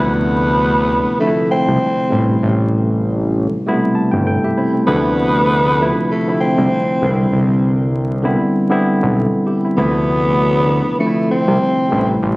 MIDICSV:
0, 0, Header, 1, 4, 480
1, 0, Start_track
1, 0, Tempo, 612245
1, 1903, Time_signature, 4, 2, 24, 8
1, 9696, End_track
2, 0, Start_track
2, 0, Title_t, "Tenor saxophone"
2, 0, Program_c, 0, 66
2, 0, Note_on_c, 0, 59, 106
2, 911, Note_off_c, 0, 59, 0
2, 941, Note_on_c, 0, 57, 86
2, 1158, Note_off_c, 0, 57, 0
2, 1186, Note_on_c, 0, 60, 92
2, 1873, Note_off_c, 0, 60, 0
2, 3819, Note_on_c, 0, 59, 117
2, 4749, Note_off_c, 0, 59, 0
2, 4790, Note_on_c, 0, 57, 86
2, 5003, Note_off_c, 0, 57, 0
2, 5020, Note_on_c, 0, 60, 96
2, 5710, Note_off_c, 0, 60, 0
2, 7663, Note_on_c, 0, 59, 108
2, 8591, Note_off_c, 0, 59, 0
2, 8624, Note_on_c, 0, 57, 85
2, 8840, Note_off_c, 0, 57, 0
2, 8868, Note_on_c, 0, 60, 91
2, 9554, Note_off_c, 0, 60, 0
2, 9696, End_track
3, 0, Start_track
3, 0, Title_t, "Tine electric piano"
3, 0, Program_c, 1, 4
3, 0, Note_on_c, 1, 48, 73
3, 0, Note_on_c, 1, 50, 77
3, 0, Note_on_c, 1, 53, 73
3, 0, Note_on_c, 1, 57, 71
3, 0, Note_on_c, 1, 60, 60
3, 0, Note_on_c, 1, 64, 86
3, 102, Note_off_c, 1, 60, 0
3, 138, Control_c, 1, 64, 127
3, 628, Note_off_c, 1, 50, 0
3, 630, Note_off_c, 1, 53, 0
3, 632, Note_off_c, 1, 57, 0
3, 634, Note_off_c, 1, 48, 0
3, 637, Note_off_c, 1, 64, 0
3, 929, Note_on_c, 1, 50, 78
3, 932, Note_on_c, 1, 53, 73
3, 937, Note_on_c, 1, 57, 69
3, 942, Note_on_c, 1, 60, 65
3, 946, Note_on_c, 1, 62, 67
3, 997, Note_on_c, 1, 64, 88
3, 1001, Note_off_c, 1, 62, 0
3, 1583, Note_off_c, 1, 50, 0
3, 1585, Note_off_c, 1, 53, 0
3, 1587, Note_off_c, 1, 57, 0
3, 1589, Note_off_c, 1, 60, 0
3, 1617, Note_off_c, 1, 64, 0
3, 1642, Note_on_c, 1, 48, 82
3, 1646, Note_on_c, 1, 55, 70
3, 1649, Note_on_c, 1, 57, 70
3, 1654, Note_on_c, 1, 71, 71
3, 1659, Note_on_c, 1, 62, 67
3, 1673, Control_c, 1, 64, 0
3, 1710, Note_on_c, 1, 64, 86
3, 1718, Note_off_c, 1, 62, 0
3, 1812, Control_c, 1, 64, 127
3, 2426, Note_off_c, 1, 48, 0
3, 2427, Note_off_c, 1, 55, 0
3, 2429, Note_off_c, 1, 57, 0
3, 2432, Note_off_c, 1, 71, 0
3, 2460, Note_off_c, 1, 64, 0
3, 2872, Note_on_c, 1, 47, 77
3, 2875, Note_on_c, 1, 55, 82
3, 2880, Note_on_c, 1, 57, 87
3, 2884, Note_on_c, 1, 59, 90
3, 2887, Note_on_c, 1, 64, 101
3, 2922, Note_on_c, 1, 48, 92
3, 2924, Note_off_c, 1, 47, 0
3, 3097, Note_on_c, 1, 81, 76
3, 3224, Note_off_c, 1, 81, 0
3, 3226, Note_on_c, 1, 79, 75
3, 3330, Note_off_c, 1, 79, 0
3, 3345, Note_on_c, 1, 69, 65
3, 3346, Note_on_c, 1, 79, 76
3, 3351, Note_off_c, 1, 57, 0
3, 3353, Note_off_c, 1, 59, 0
3, 3355, Note_off_c, 1, 64, 0
3, 3468, Note_off_c, 1, 79, 0
3, 3471, Note_off_c, 1, 69, 0
3, 3483, Note_on_c, 1, 67, 70
3, 3484, Note_on_c, 1, 76, 68
3, 3488, Note_on_c, 1, 64, 61
3, 3516, Note_off_c, 1, 55, 0
3, 3540, Note_off_c, 1, 48, 0
3, 3578, Note_off_c, 1, 64, 0
3, 3580, Note_off_c, 1, 76, 0
3, 3581, Note_off_c, 1, 67, 0
3, 3587, Note_on_c, 1, 64, 73
3, 3587, Note_on_c, 1, 72, 64
3, 3592, Note_on_c, 1, 60, 64
3, 3705, Note_off_c, 1, 60, 0
3, 3712, Note_off_c, 1, 64, 0
3, 3714, Note_on_c, 1, 60, 63
3, 3719, Note_on_c, 1, 57, 54
3, 3808, Note_off_c, 1, 72, 0
3, 3820, Note_off_c, 1, 57, 0
3, 3820, Note_on_c, 1, 50, 78
3, 3825, Note_on_c, 1, 53, 69
3, 3830, Note_on_c, 1, 57, 70
3, 3832, Control_c, 1, 64, 0
3, 3833, Note_on_c, 1, 48, 70
3, 3838, Note_on_c, 1, 64, 84
3, 3943, Note_off_c, 1, 60, 0
3, 3974, Control_c, 1, 64, 127
3, 4300, Note_off_c, 1, 50, 0
3, 4303, Note_off_c, 1, 53, 0
3, 4305, Note_off_c, 1, 57, 0
3, 4307, Note_off_c, 1, 48, 0
3, 4309, Note_off_c, 1, 64, 0
3, 4547, Note_on_c, 1, 50, 90
3, 4551, Note_on_c, 1, 53, 85
3, 4556, Note_on_c, 1, 57, 83
3, 4560, Note_on_c, 1, 48, 79
3, 4565, Note_on_c, 1, 64, 105
3, 4784, Note_off_c, 1, 50, 0
3, 4786, Note_off_c, 1, 53, 0
3, 4789, Note_off_c, 1, 57, 0
3, 4791, Note_off_c, 1, 48, 0
3, 4793, Note_off_c, 1, 64, 0
3, 4917, Note_on_c, 1, 50, 79
3, 4921, Note_on_c, 1, 53, 70
3, 4925, Note_on_c, 1, 57, 68
3, 4929, Note_on_c, 1, 60, 74
3, 4934, Note_on_c, 1, 64, 81
3, 5466, Note_off_c, 1, 50, 0
3, 5468, Note_off_c, 1, 53, 0
3, 5470, Note_off_c, 1, 57, 0
3, 5472, Note_off_c, 1, 60, 0
3, 5474, Note_off_c, 1, 64, 0
3, 5502, Note_on_c, 1, 50, 79
3, 5507, Note_on_c, 1, 55, 71
3, 5512, Note_on_c, 1, 71, 79
3, 5514, Control_c, 1, 64, 0
3, 5516, Note_on_c, 1, 60, 76
3, 5521, Note_on_c, 1, 62, 63
3, 5568, Note_off_c, 1, 62, 0
3, 5571, Note_on_c, 1, 64, 89
3, 5673, Control_c, 1, 64, 127
3, 6276, Note_off_c, 1, 50, 0
3, 6278, Note_off_c, 1, 55, 0
3, 6281, Note_off_c, 1, 71, 0
3, 6283, Note_off_c, 1, 60, 0
3, 6310, Note_off_c, 1, 64, 0
3, 6449, Note_on_c, 1, 50, 97
3, 6454, Note_on_c, 1, 55, 87
3, 6459, Note_on_c, 1, 59, 83
3, 6463, Note_on_c, 1, 60, 85
3, 6467, Note_on_c, 1, 64, 98
3, 6695, Note_off_c, 1, 50, 0
3, 6698, Note_off_c, 1, 55, 0
3, 6700, Note_off_c, 1, 59, 0
3, 6702, Note_off_c, 1, 60, 0
3, 6704, Note_off_c, 1, 64, 0
3, 6815, Note_on_c, 1, 50, 93
3, 6819, Note_on_c, 1, 55, 86
3, 6823, Note_on_c, 1, 59, 89
3, 6828, Note_on_c, 1, 60, 89
3, 6832, Note_on_c, 1, 64, 104
3, 7176, Note_off_c, 1, 59, 0
3, 7177, Note_on_c, 1, 69, 65
3, 7179, Note_off_c, 1, 60, 0
3, 7181, Note_off_c, 1, 64, 0
3, 7375, Note_off_c, 1, 50, 0
3, 7377, Note_off_c, 1, 55, 0
3, 7408, Note_off_c, 1, 69, 0
3, 7420, Note_on_c, 1, 67, 72
3, 7426, Note_on_c, 1, 64, 59
3, 7548, Note_off_c, 1, 67, 0
3, 7551, Note_off_c, 1, 64, 0
3, 7563, Note_on_c, 1, 64, 68
3, 7568, Note_on_c, 1, 60, 58
3, 7660, Note_on_c, 1, 50, 79
3, 7665, Note_on_c, 1, 53, 75
3, 7667, Note_off_c, 1, 64, 0
3, 7669, Note_on_c, 1, 57, 70
3, 7672, Control_c, 1, 64, 0
3, 7673, Note_on_c, 1, 48, 73
3, 7676, Note_on_c, 1, 64, 84
3, 7790, Note_off_c, 1, 60, 0
3, 7830, Control_c, 1, 64, 127
3, 8308, Note_off_c, 1, 50, 0
3, 8311, Note_off_c, 1, 53, 0
3, 8313, Note_off_c, 1, 57, 0
3, 8315, Note_off_c, 1, 48, 0
3, 8317, Note_off_c, 1, 64, 0
3, 8609, Note_on_c, 1, 50, 78
3, 8613, Note_on_c, 1, 53, 73
3, 8617, Note_on_c, 1, 57, 70
3, 8623, Note_on_c, 1, 60, 68
3, 8626, Note_on_c, 1, 62, 67
3, 8677, Note_on_c, 1, 64, 88
3, 8681, Note_off_c, 1, 62, 0
3, 9263, Note_off_c, 1, 50, 0
3, 9265, Note_off_c, 1, 53, 0
3, 9267, Note_off_c, 1, 57, 0
3, 9270, Note_off_c, 1, 60, 0
3, 9297, Note_off_c, 1, 64, 0
3, 9322, Note_on_c, 1, 48, 81
3, 9326, Note_on_c, 1, 55, 68
3, 9331, Note_on_c, 1, 57, 69
3, 9336, Note_on_c, 1, 71, 73
3, 9339, Note_on_c, 1, 62, 69
3, 9354, Control_c, 1, 64, 0
3, 9391, Note_on_c, 1, 64, 87
3, 9397, Note_off_c, 1, 62, 0
3, 9483, Control_c, 1, 64, 127
3, 9696, Note_off_c, 1, 48, 0
3, 9696, Note_off_c, 1, 55, 0
3, 9696, Note_off_c, 1, 57, 0
3, 9696, Note_off_c, 1, 64, 0
3, 9696, Note_off_c, 1, 71, 0
3, 9696, End_track
4, 0, Start_track
4, 0, Title_t, "Analog synth bass"
4, 0, Program_c, 2, 38
4, 0, Note_on_c, 2, 38, 107
4, 806, Note_off_c, 2, 38, 0
4, 1318, Note_on_c, 2, 36, 92
4, 1403, Note_off_c, 2, 36, 0
4, 1664, Note_on_c, 2, 33, 104
4, 1857, Note_off_c, 2, 33, 0
4, 1904, Note_on_c, 2, 33, 112
4, 2725, Note_off_c, 2, 33, 0
4, 3238, Note_on_c, 2, 31, 88
4, 3430, Note_off_c, 2, 31, 0
4, 3825, Note_on_c, 2, 38, 108
4, 4646, Note_off_c, 2, 38, 0
4, 5159, Note_on_c, 2, 36, 92
4, 5244, Note_off_c, 2, 36, 0
4, 5505, Note_on_c, 2, 36, 105
4, 5697, Note_off_c, 2, 36, 0
4, 5745, Note_on_c, 2, 36, 103
4, 6566, Note_off_c, 2, 36, 0
4, 7080, Note_on_c, 2, 35, 95
4, 7271, Note_off_c, 2, 35, 0
4, 7664, Note_on_c, 2, 38, 108
4, 8485, Note_off_c, 2, 38, 0
4, 8999, Note_on_c, 2, 36, 97
4, 9084, Note_off_c, 2, 36, 0
4, 9345, Note_on_c, 2, 33, 104
4, 9537, Note_off_c, 2, 33, 0
4, 9586, Note_on_c, 2, 33, 109
4, 9696, Note_off_c, 2, 33, 0
4, 9696, End_track
0, 0, End_of_file